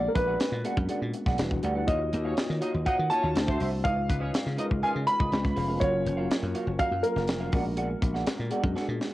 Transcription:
Already playing: tine electric piano G#3 A#3 B3 D4 F#4
0.03 muted clean electric guitar stroke
0.09 grand piano A#4
0.15 slap bass A#1, grand piano B4, muted clean electric guitar stroke, kick, closed hi-hat
0.27 clean electric guitar G#4 D5 F#5
0.40 muted clean electric guitar stroke, snare, closed hi-hat
0.52 slap bass A#2, muted clean electric guitar stroke
0.64 tine electric piano G#3 B3 C#4 F#4 A#4, clean electric guitar G#4 D5 F#5, closed hi-hat
0.70 tine electric piano D4
0.77 slap bass F#2, muted clean electric guitar stroke, kick
0.89 clean electric guitar G#4 D5 F#5, muted slap bass stroke, closed hi-hat
1.01 slap bass A#2, muted clean electric guitar stroke
1.14 muted clean electric guitar stroke, closed hi-hat
1.26 slap bass B1, clean electric guitar G#4 D5 F#5, kick, snare
1.38 slap bass E1, tine electric piano G3 D4 E4 F#4 B4, snare, closed hi-hat
1.51 muted clean electric guitar stroke, kick
1.63 slap bass D2, clean electric guitar G4 D5 F#5, closed hi-hat
1.75 tine electric piano G3 D4 E4 F#4 B4, clean electric guitar G4 D5 F#5
1.87 slap bass D#2, tine electric piano A#3 D#4 F4 F#4 C#5, clean electric guitar F#4 C#5 F5, grand piano D#5, kick, closed hi-hat
2.00 muted clean electric guitar stroke
2.12 slap bass D#2, horn section A#3 A#4, muted clean electric guitar stroke, closed hi-hat
2.24 tine electric piano A#3 D#4 F4 F#4 B4, horn section C#4 C#5, clean electric guitar F#4 C#5 F5
2.31 tine electric piano C#5
2.37 muted clean electric guitar stroke, snare, closed hi-hat
2.49 slap bass D#3, muted clean electric guitar stroke, snare
2.61 horn section D#4 D#5, clean electric guitar F#4 C#5 F5, closed hi-hat
2.73 slap bass D#2, muted clean electric guitar stroke
2.85 horn section D#4 D#5, clean electric guitar F#4 C#5 F5, grand piano F#5, kick, closed hi-hat
2.98 slap bass D#3, muted clean electric guitar stroke
3.10 tine electric piano A#3 D#4 F4 F#4 C#5, horn section C#4 C#5, grand piano A5, muted clean electric guitar stroke, closed hi-hat
3.23 slap bass D#2, clean electric guitar F#4 C#5 F5
3.35 slap bass D2, tine electric piano A3 D4 E4 C5, muted clean electric guitar stroke, snare, closed hi-hat
3.47 horn section C4 C5, clean electric guitar F#4 C5 E5, kick
3.59 slap bass C2, clean electric guitar F#4 C5 E5, open hi-hat
3.71 muted clean electric guitar stroke
3.84 slap bass C#2, tine electric piano G#3 C#4 D#4 E4 B4, clean electric guitar F4 B4 D#5, grand piano F5, kick, closed hi-hat
3.91 tine electric piano F4
3.96 muted clean electric guitar stroke
4.08 slap bass C#2, horn section B3 B4, muted clean electric guitar stroke, kick, closed hi-hat
4.20 horn section C#4 C#5, clean electric guitar F4 B4 D#5
4.33 muted clean electric guitar stroke, snare, closed hi-hat
4.45 slap bass C#3, muted clean electric guitar stroke, snare
4.57 tine electric piano G#3 C#4 D#4 F4 G#4, horn section D#4 D#5, clean electric guitar F4 B4 D#5, closed hi-hat
4.65 tine electric piano A#4
4.70 slap bass C#2, muted clean electric guitar stroke, kick
4.82 clean electric guitar F4 B4 D#5, horn section F4 F5, grand piano G#5, muted slap bass stroke, closed hi-hat
4.95 slap bass C#3, muted clean electric guitar stroke
5.07 grand piano B5, muted clean electric guitar stroke, closed hi-hat
5.19 slap bass C#2, clean electric guitar F4 B4 D#5, kick
5.31 slap bass C#2, tine electric piano G#3 B3 C#4 F4 B4, muted clean electric guitar stroke, snare, closed hi-hat
5.44 muted clean electric guitar stroke, kick
5.56 slap bass F1, clean electric guitar G#4 B4 F5, open hi-hat
5.68 tine electric piano G#3 B3 C#4 F4 A#4, clean electric guitar G#4 B4 F5
5.80 slap bass F#1, tine electric piano F#3 A#3 C#4 F4 A#4, clean electric guitar F#4 A#4 F5, grand piano C#5, kick, closed hi-hat
5.93 muted clean electric guitar stroke
6.05 slap bass F#1, muted clean electric guitar stroke, closed hi-hat
6.17 tine electric piano F#3 A#3 C#4 F4 A#4, clean electric guitar F#4 A#4 F5
6.30 muted clean electric guitar stroke, snare, closed hi-hat
6.42 slap bass F#2, muted clean electric guitar stroke
6.54 clean electric guitar F#4 A#4 F5, closed hi-hat
6.66 slap bass F#1, muted clean electric guitar stroke
6.79 clean electric guitar F#4 A#4 F5, grand piano F5, kick, closed hi-hat
6.91 slap bass F#2, muted clean electric guitar stroke
7.03 tine electric piano F#3 A#3 C#4 F4 G#4, grand piano A#4, muted clean electric guitar stroke, closed hi-hat
7.11 tine electric piano A#4
7.16 slap bass F#1, clean electric guitar F#4 A#4 F5, snare
7.28 slap bass F1, muted clean electric guitar stroke, snare, closed hi-hat
7.40 clean electric guitar F#4 A#4 F5
7.52 slap bass A#1, tine electric piano G#3 B3 C#4 F#4 A#4, clean electric guitar G#4 D5 F#5, kick, open hi-hat
7.59 tine electric piano D4
7.65 muted clean electric guitar stroke
7.77 clean electric guitar G#4 D5 F#5, closed hi-hat
7.89 muted clean electric guitar stroke
8.02 slap bass A#1, muted clean electric guitar stroke, kick, closed hi-hat
8.14 clean electric guitar G#4 D5 F#5, snare
8.27 muted clean electric guitar stroke, muted slap bass stroke, snare, closed hi-hat
8.38 slap bass A#2, muted clean electric guitar stroke
8.50 tine electric piano G#3 B3 D4 F#4 G#4, clean electric guitar G#4 D5 F#5, closed hi-hat
8.63 slap bass F#2, muted clean electric guitar stroke, kick
8.76 clean electric guitar G#4 D5 F#5, snare
8.88 slap bass A#2, muted clean electric guitar stroke
9.00 muted clean electric guitar stroke, snare

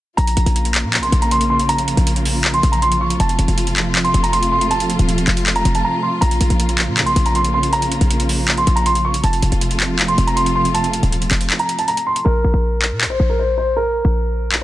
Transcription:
0.17 808-style bass A#1, string section C#3 F3 A#3 F4, grand piano A#5, closed hi-hat
0.27 closed hi-hat
0.37 808-style bass A#1, closed hi-hat
0.46 808-style bass A#1, closed hi-hat
0.56 closed hi-hat
0.65 closed hi-hat
0.75 clap, closed hi-hat
0.84 808-style bass A#2
0.94 clap, closed hi-hat
0.98 808-style bass A#1
1.02 grand piano C6, closed hi-hat
1.12 808-style bass A#1, closed hi-hat
1.22 grand piano A#5, closed hi-hat
1.31 grand piano C6, closed hi-hat
1.41 closed hi-hat
1.50 grand piano C6
1.59 closed hi-hat
1.69 grand piano A#5, closed hi-hat
1.78 closed hi-hat
1.88 closed hi-hat
1.97 808-style bass A#1, closed hi-hat
2.07 closed hi-hat
2.16 closed hi-hat
2.25 open hi-hat
2.44 clap, closed hi-hat
2.54 grand piano C6, closed hi-hat
2.63 808-style bass A#1, closed hi-hat
2.72 grand piano A#5, closed hi-hat
2.82 grand piano C6, closed hi-hat
2.92 closed hi-hat
3.01 grand piano C#6
3.10 closed hi-hat
3.20 808-style bass F1, string section C3 A3, grand piano A5, closed hi-hat
3.29 closed hi-hat
3.39 808-style bass F1, closed hi-hat
3.48 808-style bass F1, closed hi-hat
3.58 closed hi-hat
3.67 closed hi-hat
3.76 clap, closed hi-hat
3.95 clap, closed hi-hat
4.04 grand piano C6, closed hi-hat
4.14 808-style bass F1, closed hi-hat
4.23 grand piano A#5, closed hi-hat
4.32 grand piano C6, closed hi-hat
4.43 closed hi-hat
4.52 808-style bass F#1, grand piano C6
4.61 closed hi-hat
4.71 grand piano A5, closed hi-hat
4.76 808-style bass F1
4.80 closed hi-hat
4.90 closed hi-hat
4.99 808-style bass D#1, closed hi-hat
5.09 closed hi-hat
5.18 closed hi-hat
5.27 808-style bass F1, clap, closed hi-hat, open hi-hat
5.37 closed hi-hat
5.46 clap, closed hi-hat
5.56 grand piano A#5, closed hi-hat
5.65 808-style bass F1, closed hi-hat
5.75 grand piano A5, closed hi-hat
5.85 grand piano A#5
6.03 grand piano C6
6.21 808-style bass A#1, string section C#3 A#3, grand piano A#5, closed hi-hat
6.31 closed hi-hat
6.41 808-style bass A#1, closed hi-hat
6.50 808-style bass A#1, closed hi-hat
6.60 closed hi-hat
6.69 closed hi-hat
6.78 clap, closed hi-hat
6.88 808-style bass A#2
6.97 clap, closed hi-hat
7.02 808-style bass A#1
7.06 grand piano C6, closed hi-hat
7.16 808-style bass A#1, closed hi-hat
7.26 grand piano A#5, closed hi-hat
7.35 grand piano C6, closed hi-hat
7.45 closed hi-hat
7.54 grand piano C6
7.63 closed hi-hat
7.73 grand piano A#5, closed hi-hat
7.82 closed hi-hat
7.92 closed hi-hat
8.01 808-style bass A#1, closed hi-hat
8.11 closed hi-hat
8.20 closed hi-hat
8.29 open hi-hat
8.48 clap, closed hi-hat
8.57 grand piano C6, closed hi-hat
8.67 808-style bass A#1, closed hi-hat
8.76 grand piano A#5, closed hi-hat
8.86 grand piano C6, closed hi-hat
8.95 closed hi-hat
9.05 grand piano C#6
9.14 closed hi-hat
9.24 808-style bass F1, string section C3 F3 A3 F4, grand piano A5, closed hi-hat
9.33 closed hi-hat
9.42 808-style bass F1, closed hi-hat
9.52 808-style bass F1, closed hi-hat
9.61 closed hi-hat
9.71 closed hi-hat
9.80 clap, closed hi-hat
9.99 clap, closed hi-hat
10.08 grand piano C6, closed hi-hat
10.18 808-style bass F1, closed hi-hat
10.27 grand piano A#5, closed hi-hat
10.36 grand piano C6, closed hi-hat
10.46 closed hi-hat
10.56 808-style bass F#1, grand piano C6
10.65 closed hi-hat
10.74 grand piano A5, closed hi-hat
10.79 808-style bass F1
10.84 closed hi-hat
10.93 closed hi-hat
11.03 808-style bass D#1, closed hi-hat
11.12 closed hi-hat
11.22 closed hi-hat
11.31 808-style bass F1, clap, closed hi-hat, open hi-hat
11.41 closed hi-hat
11.50 clap, closed hi-hat
11.59 grand piano A#5, closed hi-hat
11.69 closed hi-hat
11.79 grand piano A5, closed hi-hat
11.88 grand piano A#5, closed hi-hat
11.97 closed hi-hat
12.07 grand piano C6
12.16 closed hi-hat
12.25 808-style bass A#1, grand piano A#4
12.44 808-style bass A#1
12.54 808-style bass A#1
12.82 clap
12.92 808-style bass A#2
13.01 clap
13.06 808-style bass A#1
13.10 grand piano C5
13.20 808-style bass A#1
13.29 grand piano A#4
13.39 grand piano C5
13.58 grand piano C5
13.76 grand piano A#4
14.05 808-style bass A#1
14.52 clap

